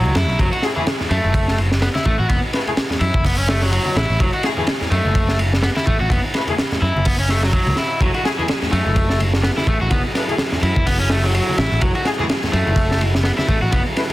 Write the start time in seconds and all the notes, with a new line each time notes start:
Already playing: F#3
0.05 C#2, high conga
0.15 F#2 E4, snare, ride
0.29 B1
0.39 F#1 F#3, kick, ride, high conga
0.52 F#4, ride
0.63 A3 E4 G#4, snare, ride
0.76 E3 A3 E4 G#4, high conga, low conga
0.87 snare, ride
1.00 snare, low conga
1.10 F#2 A3, ride
1.24 F#1, high conga
1.34 kick, ride
1.48 snare
1.58 ride, high conga
1.72 snare
1.82 B3, snare, ride
1.95 E4, snare, high conga
2.05 A1 A3, kick, ride
2.19 A1 F#4
2.29 F#1 B3, kick, ride, high conga
2.53 A3 E4 B4, snare, ride
2.67 A3 E4 G#4, ride, high conga
2.77 snare, ride
2.90 snare, low conga
3.01 F#2 E4, ride
3.14 F#1, kick, high conga
3.25 B3, kick, open hi-hat
3.38 C#4
3.48 A3, snare, ride, high conga
3.62 F#3, snare
3.72 F#3, ride
3.85 high conga
3.96 A1 E4, snare, ride
4.10 A1
4.20 F#1 F#3, kick, ride, high conga
4.33 F#4, ride
4.43 A3 E4 G#4, snare, ride
4.57 E3 A3 E4 G#4, high conga, low conga
4.67 snare, ride
4.81 snare, low conga
4.91 F#2 A3, ride
5.05 F#1, high conga
5.15 kick, ride
5.28 snare
5.39 ride, high conga
5.54 snare
5.62 B3, snare, ride
5.76 E4, snare, high conga
5.87 A1 A3, kick, ride
6.00 A1 F#4
6.10 F#1 B3, kick, ride, high conga
6.34 A3 E4 B4, snare, ride
6.47 A3 E4 G#4, ride, high conga, low conga
6.58 snare, ride
6.72 snare, low conga
6.82 F#2 E4
6.96 F#1, high conga
7.05 B3, kick, open hi-hat
7.19 C#4
7.29 A3, snare, ride, high conga
7.43 F#3, snare
7.53 F#3, kick, ride
7.67 C#2, ride, high conga
7.77 E4, snare, ride
8.01 F#1 F#3 E4 G#4 A4, kick, ride, high conga
8.14 F#4, ride
8.25 A3 E4 G#4, snare, ride
8.38 E3 A3 E4 G#4, high conga, low conga
8.48 snare, ride
8.62 snare, low conga
8.72 F#2 A3, ride
8.86 F#1, high conga
8.96 kick, ride
9.10 snare
9.19 ride, high conga
9.33 snare
9.43 B3, snare, ride
9.57 E4, snare, high conga
9.67 A1 A3, kick, ride
9.81 A1 F#4
9.91 F#1 B3, kick, ride, high conga
10.15 A3 E4 B4, snare, ride
10.29 A3 E4 G#4, ride, high conga
10.38 snare, ride
10.52 snare, low conga
10.63 F#2 E4, ride
10.76 F#1, kick, high conga
10.86 B3, kick, open hi-hat
11.00 C#4
11.10 A3, snare, ride, high conga
11.24 F#3, snare
11.34 F#3, ride
11.49 high conga
11.58 A1 E4, snare, ride
11.72 A1
11.81 F#3, kick, ride, high conga
11.95 F#4, ride
12.05 A3 E4 G#4, snare, ride
12.19 E3 A3 E4 G#4, high conga, low conga
12.29 snare, ride
12.44 snare, low conga
12.53 F#2 A3, ride
12.67 F#1, high conga
12.76 kick, ride
12.91 snare
13.01 ride, high conga
13.15 snare
13.24 B3, snare, ride
13.38 E4, snare, high conga
13.48 A1 A3, kick, ride
13.62 A1 F#4
13.72 F#1 B3, kick, ride, high conga
13.96 A3 E4 B4, snare, ride
14.09 ride, high conga